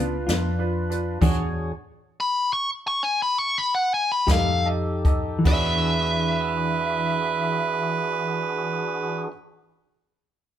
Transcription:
0.00 0.26 C#2 medium
0.00 0.16 C#3 soft
0.00 0.16 B3 medium
0.00 0.17 D4 medium
0.00 0.21 D4 medium
0.00 1.19 D4 medium
0.00 0.17 F4 medium
0.00 0.21 F4 medium
0.00 1.19 F4 medium
0.00 0.22 B4 medium
0.00 1.19 B4 medium
0.00 4.25 C#5 medium
0.27 1.19 F2 medium
0.27 0.47 B3 soft
0.27 0.51 D4 medium
0.27 0.47 D4 soft
0.27 0.46 F4 soft
0.27 0.52 F4 medium
0.27 0.52 B4 medium
0.27 snare medium
0.27 closed hi-hat medium
0.59 0.82 D4 medium
0.59 0.83 F4 soft
0.59 0.83 B4 medium
0.90 1.13 D4 medium
0.90 1.14 F4 soft
0.90 1.14 B4 medium
0.90 closed hi-hat soft
1.21 1.71 E2 medium
1.21 1.41 E3 medium
1.21 1.45 D4 medium
1.21 1.72 D4 medium
1.21 1.41 D4 medium
1.21 1.45 F#4 medium
1.21 1.72 F#4 medium
1.21 1.45 G#4 medium
1.21 1.72 G#4 medium
1.21 1.41 G#4 medium
1.21 1.72 C#5 medium
1.21 1.46 C#5 medium
1.21 1.41 C#5 medium
1.21 kick medium
1.21 closed hi-hat medium
1.21 crash medium
2.20 2.51 B5 medium
2.53 2.68 C#6 medium
2.88 3.03 C#6 medium
3.03 3.19 G#5 medium
3.22 3.38 B5 medium
3.38 3.58 C#6 medium
3.58 3.74 B5 medium
3.75 3.91 F#5 medium
3.94 4.10 G#5 medium
4.12 4.28 B5 medium
4.27 5.42 F2 medium
4.27 4.51 A3 soft
4.27 5.44 D#4 medium
4.27 4.50 D#4 soft
4.27 4.56 G4 medium
4.27 4.50 G4 soft
4.27 5.45 G4 medium
4.27 4.56 A4 medium
4.27 5.44 A4 medium
4.27 4.56 D#5 medium
4.27 kick medium
4.27 snare medium
4.27 closed hi-hat medium
4.31 4.66 F5 medium
4.65 4.95 G4 medium
4.65 4.95 A4 soft
4.65 4.95 D#5 medium
5.05 5.35 G4 medium
5.05 5.35 A4 soft
5.05 5.35 D#5 medium
5.05 kick medium
5.05 closed hi-hat medium
5.39 9.26 E3 medium
5.44 9.29 E2 medium
5.44 9.28 D4 medium
5.44 9.34 D4 medium
5.44 9.27 F#4 medium
5.44 9.28 F#4 medium
5.44 9.28 G#4 medium
5.44 9.29 G#4 medium
5.44 9.28 B4 medium
5.44 9.30 C#5 medium
5.44 9.31 D5 medium
5.44 9.31 E5 medium
5.44 kick medium
5.44 crash medium
5.53 9.40 G#4 medium

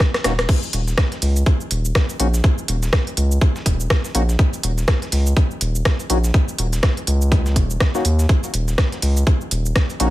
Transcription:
0.00 kick loud
0.00 cross-stick medium
0.00 snare loud
0.00 closed hi-hat medium
0.14 cross-stick medium
0.14 snare loud
0.14 closed hi-hat medium
0.24 0.46 D#1 loud
0.24 0.32 A#3 medium
0.24 0.32 C#4 medium
0.24 0.32 D#4 medium
0.24 0.32 F#4 loud
0.24 cross-stick medium
0.24 snare loud
0.24 closed hi-hat medium
0.24 open hi-hat medium
0.39 cross-stick medium
0.39 snare loud
0.39 closed hi-hat medium
0.49 kick loud
0.49 closed hi-hat medium
0.49 crash loud
0.63 closed hi-hat soft
0.63 shaker soft
0.73 0.94 D#1 loud
0.73 closed hi-hat medium
0.73 open hi-hat medium
0.88 snare soft
0.88 shaker medium
0.98 kick loud
0.98 cross-stick medium
0.98 snare loud
0.98 closed hi-hat medium
1.12 snare soft
1.12 open hi-hat soft
1.22 1.43 C#2 medium
1.22 open hi-hat medium
1.22 open hi-hat loud
1.36 closed hi-hat soft
1.36 shaker medium
1.46 kick loud
1.46 closed hi-hat medium
1.61 shaker soft
1.71 1.92 D#1 loud
1.71 closed hi-hat medium
1.71 open hi-hat medium
1.85 shaker medium
1.95 kick loud
1.95 cross-stick medium
1.95 snare loud
1.95 closed hi-hat medium
2.10 closed hi-hat soft
2.10 shaker soft
2.20 2.41 A#1 medium
2.20 2.28 A#3 medium
2.20 2.28 C#4 medium
2.20 2.28 D#4 medium
2.20 2.28 F#4 loud
2.20 closed hi-hat medium
2.20 open hi-hat medium
2.34 snare soft
2.34 shaker medium
2.44 kick loud
2.44 closed hi-hat medium
2.58 shaker soft
2.68 2.90 D#1 loud
2.68 closed hi-hat medium
2.68 open hi-hat loud
2.83 snare medium
2.83 shaker medium
2.93 kick loud
2.93 cross-stick loud
2.93 snare loud
2.93 closed hi-hat medium
3.07 open hi-hat soft
3.17 3.38 C#2 medium
3.17 closed hi-hat medium
3.17 open hi-hat loud
3.32 shaker medium
3.41 kick loud
3.41 closed hi-hat medium
3.56 snare medium
3.56 shaker soft
3.66 3.87 D#1 loud
3.66 kick medium
3.66 closed hi-hat medium
3.66 open hi-hat loud
3.80 shaker medium
3.90 kick loud
3.90 cross-stick loud
3.90 snare loud
3.90 closed hi-hat medium
4.05 snare soft
4.05 shaker soft
4.15 4.36 A#1 medium
4.15 4.23 A#3 medium
4.15 4.23 C#4 medium
4.15 4.23 D#4 medium
4.15 4.23 F#4 loud
4.15 closed hi-hat medium
4.15 open hi-hat medium
4.29 snare soft
4.29 shaker medium
4.39 kick loud
4.39 closed hi-hat medium
4.53 closed hi-hat soft
4.53 shaker soft
4.63 4.85 D#1 loud
4.63 closed hi-hat medium
4.63 open hi-hat loud
4.78 snare soft
4.78 shaker medium
4.88 kick loud
4.88 cross-stick medium
4.88 snare loud
4.88 closed hi-hat medium
5.02 snare soft
5.02 open hi-hat soft
5.12 5.33 C#2 medium
5.12 open hi-hat loud
5.12 open hi-hat medium
5.27 closed hi-hat soft
5.27 shaker medium
5.37 kick loud
5.37 closed hi-hat medium
5.51 shaker soft
5.61 5.82 D#1 loud
5.61 closed hi-hat medium
5.61 open hi-hat loud
5.75 shaker medium
5.85 kick loud
5.85 cross-stick medium
5.85 snare loud
5.85 closed hi-hat medium
6.00 closed hi-hat soft
6.00 shaker soft
6.10 6.31 A#1 medium
6.10 6.18 A#3 medium
6.10 6.18 C#4 medium
6.10 6.18 D#4 medium
6.10 6.18 F#4 loud
6.10 closed hi-hat medium
6.10 open hi-hat loud
6.24 snare soft
6.24 shaker medium
6.34 kick loud
6.34 closed hi-hat medium
6.48 shaker soft
6.58 6.80 D#1 loud
6.58 closed hi-hat medium
6.58 open hi-hat loud
6.73 snare medium
6.73 open hi-hat soft
6.73 shaker medium
6.83 kick loud
6.83 cross-stick medium
6.83 snare loud
6.83 closed hi-hat medium
6.97 open hi-hat soft
7.07 7.58 C#2 medium
7.07 closed hi-hat medium
7.07 open hi-hat loud
7.22 shaker medium
7.32 kick loud
7.32 closed hi-hat medium
7.46 snare medium
7.46 shaker soft
7.56 7.77 D#1 loud
7.56 kick medium
7.56 closed hi-hat medium
7.56 open hi-hat loud
7.70 shaker medium
7.80 kick loud
7.80 cross-stick medium
7.80 snare loud
7.80 closed hi-hat medium
7.95 8.04 A#3 medium
7.95 8.04 C#4 medium
7.95 8.04 D#4 medium
7.95 8.04 F#4 loud
7.95 snare soft
7.95 shaker soft
8.05 8.26 D#2 loud
8.05 closed hi-hat medium
8.05 open hi-hat medium
8.19 snare soft
8.19 shaker soft
8.29 kick loud
8.29 closed hi-hat medium
8.44 closed hi-hat soft
8.44 shaker soft
8.54 8.75 D#1 loud
8.54 closed hi-hat medium
8.54 open hi-hat medium
8.68 snare soft
8.68 shaker medium
8.78 kick loud
8.78 cross-stick medium
8.78 snare loud
8.78 closed hi-hat medium
8.92 snare soft
8.92 open hi-hat soft
9.02 9.24 C#2 medium
9.02 open hi-hat loud
9.02 open hi-hat medium
9.17 closed hi-hat soft
9.17 shaker soft
9.27 kick loud
9.27 closed hi-hat medium
9.41 shaker soft
9.51 9.72 D#1 loud
9.51 closed hi-hat medium
9.51 open hi-hat medium
9.66 shaker medium
9.76 kick loud
9.76 cross-stick medium
9.76 snare loud
9.76 closed hi-hat medium
9.90 closed hi-hat soft
9.90 shaker soft
10.00 10.10 A#1 medium
10.00 10.08 A#3 medium
10.00 10.08 C#4 medium
10.00 10.08 D#4 medium
10.00 10.08 F#4 loud
10.00 closed hi-hat medium
10.00 open hi-hat medium

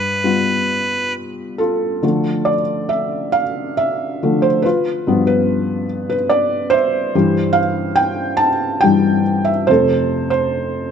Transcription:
0.00 1.99 G2 medium
0.00 1.13 B4 medium
0.24 1.99 G3 soft
0.24 2.00 B3 soft
0.24 1.59 F4 soft
1.58 2.87 F4 soft
1.58 2.49 A4 medium
2.03 2.61 D3 soft
2.03 2.61 F3 soft
2.03 2.62 A3 soft
2.45 2.55 D5 medium
2.89 3.35 E5 medium
3.32 3.42 F5 medium
3.77 4.44 E5 medium
4.23 4.61 D3 soft
4.23 4.61 F3 soft
4.23 4.61 A3 soft
4.42 4.64 C5 medium
4.62 5.86 F4 medium
4.62 5.25 B4 medium
5.07 6.27 G2 medium
5.07 6.28 F3 soft
5.07 6.28 B3 medium
5.27 6.08 B4 medium
6.10 6.15 B4 medium
6.29 6.73 D5 medium
6.70 7.57 C5 loud
6.70 7.94 E5 medium
7.15 8.82 G2 medium
7.15 8.82 E3 soft
7.15 8.82 G3 medium
7.53 7.97 F5 medium
7.96 8.40 G5 medium
8.37 8.47 A5 loud
8.81 9.22 G2 soft
8.81 9.22 E3 soft
8.81 9.23 G3 medium
8.81 9.48 G5 medium
9.45 9.68 E5 medium
9.67 10.91 F2 soft
9.67 10.91 C3 soft
9.67 10.91 A3 soft
9.67 10.91 A4 medium
9.67 10.29 C5 medium
10.30 10.91 C5 medium

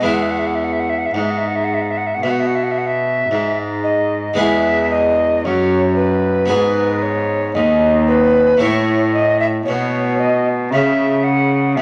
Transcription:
0.01 1.13 E2 medium
0.01 1.11 E2 soft
0.01 4.32 G#3 soft
0.01 4.33 B3 soft
0.01 4.34 E4 soft
0.01 0.15 E5 medium
0.14 0.24 F#5 medium
0.22 0.32 E5 medium
0.31 0.41 F#5 medium
0.39 0.49 E5 medium
0.47 0.57 F#5 medium
0.55 0.66 E5 medium
0.64 0.74 F#5 medium
0.73 0.82 E5 medium
0.80 0.91 F#5 medium
0.90 1.00 E5 medium
0.98 1.07 F#5 medium
1.06 1.15 E5 medium
1.13 2.21 G#2 medium
1.13 2.20 G#2 medium
1.13 1.24 F#5 medium
1.22 1.32 E5 medium
1.31 1.39 F#5 medium
1.38 1.49 E5 medium
1.48 1.57 F#5 medium
1.56 1.66 E5 medium
1.64 1.76 F#5 medium
1.74 1.83 E5 medium
1.82 1.92 F#5 medium
1.90 1.99 E5 medium
1.97 2.08 F#5 medium
2.07 2.16 E5 medium
2.14 2.24 F#5 medium
2.22 3.29 B2 medium
2.22 3.27 B2 medium
2.22 2.32 E5 medium
2.31 2.41 F#5 medium
2.40 2.48 E5 medium
2.47 2.57 F#5 medium
2.55 2.65 E5 medium
2.64 2.73 F#5 medium
2.71 2.80 E5 medium
2.78 2.88 F#5 medium
2.87 3.58 E5 medium
3.31 4.36 G#2 medium
3.31 4.35 G#2 soft
3.84 4.40 D#5 medium
4.34 5.39 G#3 medium
4.34 5.40 B3 medium
4.34 6.45 G#4 medium
4.38 5.46 E2 medium
4.38 5.41 E2 medium
4.38 4.90 E5 medium
4.90 5.46 D#5 loud
5.44 6.51 F#2 medium
5.44 6.46 F#2 medium
5.44 5.95 C#5 loud
5.96 6.48 B4 medium
6.46 8.55 B3 medium
6.46 8.55 G#4 medium
6.46 7.04 B4 medium
6.50 7.56 G#2 medium
6.50 7.52 G#2 medium
7.03 7.54 C#5 loud
7.54 8.60 D#2 medium
7.54 8.57 D#2 medium
7.54 8.06 D#5 loud
8.08 8.62 B4 loud
8.57 9.64 A2 medium
8.57 11.82 A3 medium
8.57 11.82 E4 medium
8.57 11.82 C#5 soft
8.57 9.13 C#5 loud
8.62 9.63 A2 medium
9.14 9.39 D#5 loud
9.40 9.46 E5 medium
9.65 10.73 B2 medium
9.65 10.68 B2 medium
9.65 10.21 C#5 medium
10.20 10.49 D#5 loud
10.71 11.77 C#3 medium
10.71 11.72 C#3 medium
10.71 11.25 E5 medium
11.24 11.78 F#5 loud
11.75 11.82 B2 medium
11.75 11.82 E5 loud

